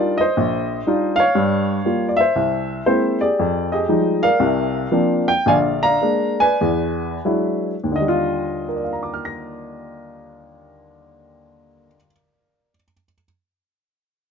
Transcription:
Already playing: G3 D4 D#4 F4 A#4 D5
0.18 C5 D#5
0.37 A#1
0.87 G3 D4 D#4 F4
1.16 C#5 F5
1.35 G2 G3
1.85 G3 A#3 F4
2.08 D5
2.17 C5 E5
2.36 C2
2.86 G#3 A#3 C4 E4 C5
3.21 G4 G#4 D5
3.39 F2
3.72 G4 G#4 D#5
3.89 F3 G3 G#3 D#4
4.23 A#4 D5 F5
4.40 C2 C3
4.91 F3 A#3 C4 D4
5.28 G5
5.46 A#1 D3 D5 F5 G#5
5.83 D5 F5 A#5
6.02 G#3 A#3 D4
6.40 B4 D5 G#5
6.61 E2
7.25 F#3 G#3 D4 E4
7.84 D#2
7.92 D3
7.96 D#5
8.00 G3
8.08 F4
8.68 A#4
8.75 D5
8.84 F5
8.93 A#5
9.03 D6
9.14 F6
9.25 A#6

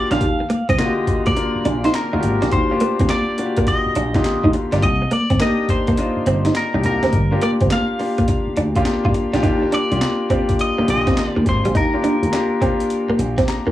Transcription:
Already playing: A#3 D4 F4 F#4 G4 A#4 D5
0.10 A#1 A#3 D4 F4 G4 F5, snare, closed hi-hat
0.21 D#2, kick, closed hi-hat
0.40 muted clean electric guitar stroke
0.50 A#3, closed hi-hat
0.69 C2 C4 D#5, kick, closed hi-hat
0.78 D3 A#3 F4 F#4, snare, clap, closed hi-hat
0.86 G4
1.07 muted clean electric guitar stroke, kick, closed hi-hat
1.26 A#3 D5, kick, closed hi-hat
1.35 A#3 D4 F4 A#4, muted clean electric guitar stroke, closed hi-hat
1.56 muted slap bass stroke
1.65 A#1 D4, closed hi-hat
1.84 D#4 C5, snare, closed hi-hat
1.94 A#4, snare, clap, closed hi-hat
2.13 D2 A#3 D4 D#4 F4 F#4
2.20 G#1 G4, muted clean electric guitar stroke, closed hi-hat
2.42 A#1 D4, snare, closed hi-hat
2.52 D#2 C5, kick, closed hi-hat
2.70 A#3 D4 F4 G4, muted clean electric guitar stroke
2.80 A#3, closed hi-hat
2.99 D2 C4, kick, closed hi-hat
3.09 A#3 D5, snare, clap, closed hi-hat
3.37 A#3 D4 F4 F#4, muted clean electric guitar stroke, closed hi-hat
3.45 G4
3.57 A#3, kick, closed hi-hat
3.67 D#5, muted clean electric guitar stroke, kick, closed hi-hat
3.86 muted slap bass stroke
3.95 A#1 D4, closed hi-hat
4.14 D3 A#3 D#4 F4 G4, kick, snare, closed hi-hat
4.24 muted slap bass stroke, snare, clap, closed hi-hat
4.44 D2 D#4, kick
4.53 muted clean electric guitar stroke, closed hi-hat
4.72 G1 A#3 D4 F4 G4, snare, closed hi-hat
4.82 C2 D#5, kick, closed hi-hat
5.02 muted clean electric guitar stroke
5.11 A#3 D5, closed hi-hat
5.30 G1 C4, kick, closed hi-hat
5.39 A#3 D4 D#4 G4 D#5, snare, clap, closed hi-hat
5.68 C5, muted clean electric guitar stroke, kick, closed hi-hat
5.87 A#3, kick, closed hi-hat
5.97 A#3 D4 D#4 F4, muted clean electric guitar stroke, closed hi-hat
6.16 muted slap bass stroke
6.26 G1 C4, closed hi-hat
6.45 D#4, snare, closed hi-hat
6.55 A#4, snare, clap, closed hi-hat
6.74 C2 A#3 D4 D#4 G4
6.83 C2 A#4, muted clean electric guitar stroke, closed hi-hat
7.02 D2 C4, snare, closed hi-hat
7.13 G1, kick, closed hi-hat
7.31 A#3 D4 F4 G4, muted clean electric guitar stroke
7.41 A#3 D5, closed hi-hat
7.60 G1 C4, kick, closed hi-hat
7.70 A#3 F5, snare, clap, closed hi-hat
7.99 A#3 D4 F4 G4, muted clean electric guitar stroke, open hi-hat
8.18 A#3, kick, closed hi-hat
8.28 muted clean electric guitar stroke, kick, closed hi-hat
8.47 muted slap bass stroke
8.57 D2 D4, closed hi-hat
8.76 A#3 D4 F4 G4, kick, closed hi-hat
8.85 muted slap bass stroke, snare, clap, closed hi-hat
9.05 G2 F4, kick
9.14 muted clean electric guitar stroke, closed hi-hat
9.34 A#1 A#3 D4 F4 G4, snare, closed hi-hat
9.43 D#2 A#3 D4 D#4 F4 G4, kick, closed hi-hat
9.63 muted clean electric guitar stroke
9.72 D4 D5, closed hi-hat
9.91 C2 A#3 D4 F4 G4, closed hi-hat
10.01 snare, clap, closed hi-hat
10.30 A#3 C4 D4 F4 G4, kick, closed hi-hat
10.49 kick, closed hi-hat
10.59 D#5, closed hi-hat
10.78 D3 A#3 F4 G4, muted slap bass stroke
10.88 A#1 D#5, muted clean electric guitar stroke, closed hi-hat
11.07 C4, kick, snare, closed hi-hat
11.17 snare, clap, closed hi-hat
11.28 D5
11.36 D2 A#3
11.46 G#1 C5, muted clean electric guitar stroke, kick, closed hi-hat
11.65 A#1 G3, closed hi-hat
11.75 D#2 D#4 A#4, kick, closed hi-hat
11.93 A#3 D4 F4 G4, muted clean electric guitar stroke
12.04 D4, closed hi-hat
12.22 D2, closed hi-hat
12.32 A#3 D4 F4 G4, snare, clap, closed hi-hat
12.61 A#3 C4 D4 F4 G4, kick, closed hi-hat
12.80 closed hi-hat
12.90 closed hi-hat
13.09 A#3, muted slap bass stroke
13.19 A#1, muted clean electric guitar stroke, closed hi-hat
13.38 C4, kick, snare, closed hi-hat
13.48 A#5, muted slap bass stroke, snare, clap, closed hi-hat
13.66 D2 A#3

